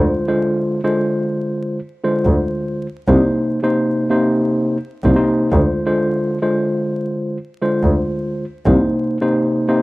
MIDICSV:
0, 0, Header, 1, 3, 480
1, 0, Start_track
1, 0, Tempo, 697674
1, 193, Time_signature, 4, 2, 24, 8
1, 6757, End_track
2, 0, Start_track
2, 0, Title_t, "Tine electric piano"
2, 0, Program_c, 0, 4
2, 0, Note_on_c, 0, 50, 81
2, 0, Note_on_c, 0, 56, 75
2, 0, Note_on_c, 0, 65, 74
2, 0, Note_on_c, 0, 72, 81
2, 179, Note_off_c, 0, 50, 0
2, 180, Note_off_c, 0, 56, 0
2, 181, Note_off_c, 0, 65, 0
2, 182, Note_off_c, 0, 72, 0
2, 191, Note_on_c, 0, 50, 95
2, 193, Note_on_c, 0, 56, 83
2, 195, Note_on_c, 0, 65, 90
2, 197, Note_on_c, 0, 72, 106
2, 545, Note_off_c, 0, 50, 0
2, 546, Note_off_c, 0, 56, 0
2, 547, Note_off_c, 0, 65, 0
2, 548, Note_off_c, 0, 72, 0
2, 576, Note_on_c, 0, 50, 98
2, 578, Note_on_c, 0, 56, 90
2, 580, Note_on_c, 0, 65, 86
2, 581, Note_on_c, 0, 72, 106
2, 1228, Note_off_c, 0, 50, 0
2, 1229, Note_off_c, 0, 56, 0
2, 1230, Note_off_c, 0, 65, 0
2, 1230, Note_off_c, 0, 72, 0
2, 1400, Note_on_c, 0, 50, 103
2, 1403, Note_on_c, 0, 56, 85
2, 1404, Note_on_c, 0, 65, 78
2, 1406, Note_on_c, 0, 72, 105
2, 1966, Note_off_c, 0, 50, 0
2, 1967, Note_off_c, 0, 56, 0
2, 1968, Note_off_c, 0, 65, 0
2, 1969, Note_off_c, 0, 72, 0
2, 2115, Note_on_c, 0, 48, 85
2, 2116, Note_on_c, 0, 58, 90
2, 2119, Note_on_c, 0, 63, 85
2, 2120, Note_on_c, 0, 72, 104
2, 2467, Note_off_c, 0, 48, 0
2, 2468, Note_off_c, 0, 58, 0
2, 2469, Note_off_c, 0, 63, 0
2, 2470, Note_off_c, 0, 72, 0
2, 2497, Note_on_c, 0, 48, 96
2, 2499, Note_on_c, 0, 58, 82
2, 2500, Note_on_c, 0, 63, 90
2, 2502, Note_on_c, 0, 72, 106
2, 2809, Note_off_c, 0, 48, 0
2, 2810, Note_off_c, 0, 58, 0
2, 2811, Note_off_c, 0, 63, 0
2, 2812, Note_off_c, 0, 72, 0
2, 2820, Note_on_c, 0, 48, 97
2, 2822, Note_on_c, 0, 58, 88
2, 2824, Note_on_c, 0, 63, 84
2, 2826, Note_on_c, 0, 72, 106
2, 3277, Note_off_c, 0, 48, 0
2, 3278, Note_off_c, 0, 58, 0
2, 3279, Note_off_c, 0, 63, 0
2, 3280, Note_off_c, 0, 72, 0
2, 3469, Note_on_c, 0, 48, 88
2, 3471, Note_on_c, 0, 58, 85
2, 3473, Note_on_c, 0, 63, 87
2, 3475, Note_on_c, 0, 72, 107
2, 3539, Note_off_c, 0, 48, 0
2, 3540, Note_off_c, 0, 58, 0
2, 3542, Note_off_c, 0, 63, 0
2, 3544, Note_off_c, 0, 72, 0
2, 3547, Note_on_c, 0, 48, 86
2, 3548, Note_on_c, 0, 58, 72
2, 3550, Note_on_c, 0, 63, 79
2, 3552, Note_on_c, 0, 72, 93
2, 3776, Note_off_c, 0, 48, 0
2, 3776, Note_off_c, 0, 58, 0
2, 3777, Note_off_c, 0, 63, 0
2, 3778, Note_off_c, 0, 72, 0
2, 3795, Note_on_c, 0, 50, 85
2, 3796, Note_on_c, 0, 56, 74
2, 3798, Note_on_c, 0, 65, 70
2, 3800, Note_on_c, 0, 72, 80
2, 4019, Note_off_c, 0, 50, 0
2, 4020, Note_off_c, 0, 56, 0
2, 4021, Note_off_c, 0, 65, 0
2, 4022, Note_off_c, 0, 72, 0
2, 4031, Note_on_c, 0, 50, 100
2, 4033, Note_on_c, 0, 56, 81
2, 4035, Note_on_c, 0, 65, 87
2, 4036, Note_on_c, 0, 72, 108
2, 4385, Note_off_c, 0, 50, 0
2, 4386, Note_off_c, 0, 56, 0
2, 4387, Note_off_c, 0, 65, 0
2, 4388, Note_off_c, 0, 72, 0
2, 4416, Note_on_c, 0, 50, 95
2, 4418, Note_on_c, 0, 56, 89
2, 4420, Note_on_c, 0, 65, 84
2, 4422, Note_on_c, 0, 72, 102
2, 5068, Note_off_c, 0, 50, 0
2, 5069, Note_off_c, 0, 56, 0
2, 5070, Note_off_c, 0, 65, 0
2, 5071, Note_off_c, 0, 72, 0
2, 5240, Note_on_c, 0, 50, 99
2, 5241, Note_on_c, 0, 56, 83
2, 5243, Note_on_c, 0, 65, 82
2, 5245, Note_on_c, 0, 72, 105
2, 5806, Note_off_c, 0, 50, 0
2, 5807, Note_off_c, 0, 56, 0
2, 5807, Note_off_c, 0, 65, 0
2, 5808, Note_off_c, 0, 72, 0
2, 5954, Note_on_c, 0, 48, 84
2, 5956, Note_on_c, 0, 58, 90
2, 5958, Note_on_c, 0, 63, 83
2, 5960, Note_on_c, 0, 72, 102
2, 6307, Note_off_c, 0, 48, 0
2, 6308, Note_off_c, 0, 58, 0
2, 6308, Note_off_c, 0, 63, 0
2, 6309, Note_off_c, 0, 72, 0
2, 6337, Note_on_c, 0, 48, 99
2, 6339, Note_on_c, 0, 58, 84
2, 6340, Note_on_c, 0, 63, 91
2, 6342, Note_on_c, 0, 72, 107
2, 6649, Note_off_c, 0, 48, 0
2, 6650, Note_off_c, 0, 58, 0
2, 6651, Note_off_c, 0, 63, 0
2, 6652, Note_off_c, 0, 72, 0
2, 6659, Note_on_c, 0, 48, 93
2, 6660, Note_on_c, 0, 58, 88
2, 6662, Note_on_c, 0, 63, 88
2, 6664, Note_on_c, 0, 72, 106
2, 6757, Note_off_c, 0, 48, 0
2, 6757, Note_off_c, 0, 58, 0
2, 6757, Note_off_c, 0, 63, 0
2, 6757, Note_off_c, 0, 72, 0
2, 6757, End_track
3, 0, Start_track
3, 0, Title_t, "Double bass"
3, 0, Program_c, 1, 43
3, 1549, Note_on_c, 1, 38, 90
3, 1604, Note_off_c, 1, 38, 0
3, 2120, Note_on_c, 1, 36, 116
3, 2175, Note_off_c, 1, 36, 0
3, 3468, Note_on_c, 1, 36, 92
3, 3523, Note_off_c, 1, 36, 0
3, 3799, Note_on_c, 1, 38, 101
3, 3855, Note_off_c, 1, 38, 0
3, 5387, Note_on_c, 1, 38, 93
3, 5442, Note_off_c, 1, 38, 0
3, 5959, Note_on_c, 1, 36, 112
3, 6014, Note_off_c, 1, 36, 0
3, 6757, End_track
0, 0, End_of_file